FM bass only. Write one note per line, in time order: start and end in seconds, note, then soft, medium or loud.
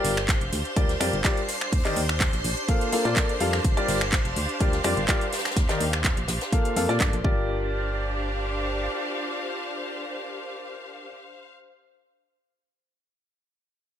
0.05 0.37 G1 medium
0.41 0.50 F1 medium
0.53 0.63 D2 loud
0.77 0.96 D2 loud
1.01 1.11 F2 medium
1.13 1.22 G1 medium
1.73 1.83 D#2 loud
1.97 2.29 D#2 loud
2.33 2.42 A#1 medium
2.45 2.55 A#1 loud
3.05 3.14 A#2 loud
3.41 3.60 F2 medium
3.65 3.75 G1 loud
3.89 4.21 G1 loud
4.25 4.34 F1 medium
4.36 4.47 D2 loud
4.61 4.80 D2 loud
4.85 4.95 F2 loud
4.97 5.06 G1 medium
5.57 5.67 D#2 loud
5.80 6.13 D#2 medium
6.17 6.26 A#1 medium
6.28 6.39 A#1 medium
6.76 6.87 F2 loud
6.89 6.98 A#2 loud
7.01 7.11 G2 medium
7.13 7.22 A#1 loud
7.25 8.89 G1 medium